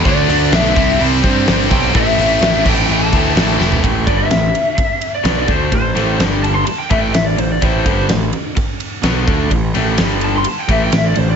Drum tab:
CC |----------------|------x---------|----------------|----------------|
RD |----------------|----------------|x-x-x-x-x-x-x-x-|x-x-x-x-x-x-x-x-|
HH |o-o-o-o-o-o-o-o-|o-o-o-----o-o---|----------------|----------------|
SD |----o-------oo--|----o-------o-o-|--o-o-------o---|--o-o-------o---|
FT |----------------|---------------o|----------------|----------------|
BD |o-----o---o---o-|o-----o---o-----|o-o-----o-----o-|o---------o-----|

CC |----------------|----------------|
RD |x-x-x-x-x-x-x-x-|x-x-x-x-x-x-x-x-|
HH |----------------|----------------|
SD |----o-------o---|--o-o-------o---|
FT |----------------|----------------|
BD |o-o-----o-----o-|o---------o-----|